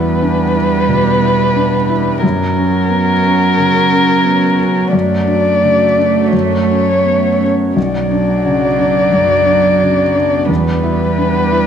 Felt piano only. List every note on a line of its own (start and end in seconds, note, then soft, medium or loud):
0.00 0.85 E2 medium
0.00 0.42 E4 soft
0.22 0.55 D4 soft
0.55 1.09 E4 soft
0.88 1.43 B2 soft
1.22 1.76 E4 soft
1.56 1.89 D4 soft
1.89 2.23 E4 soft
2.23 3.54 F#2 medium
2.56 3.11 C#4 soft
2.90 3.24 B3 soft
3.24 3.78 C#4 soft
3.58 4.12 C#3 soft
3.90 4.45 C#4 soft
4.25 4.59 B3 soft
4.59 4.93 C#4 soft
4.93 6.29 F#2 medium
5.27 5.83 D4 soft
5.63 5.98 C#3 soft
5.97 6.33 D4 soft
6.33 7.72 F#2 medium
6.69 7.27 C#4 soft
7.06 7.41 B3 soft
7.40 7.76 C#4 soft
7.76 9.09 B1 medium
8.11 8.65 D4 soft
8.45 8.79 C#3 soft
8.78 9.33 D4 soft
9.12 9.67 F#2 soft
9.46 10.01 D4 soft
9.81 10.15 C#3 soft
10.15 10.50 D4 soft
10.49 11.67 E2 medium
10.83 11.38 E4 soft
11.18 11.52 D4 soft
11.52 11.67 E4 soft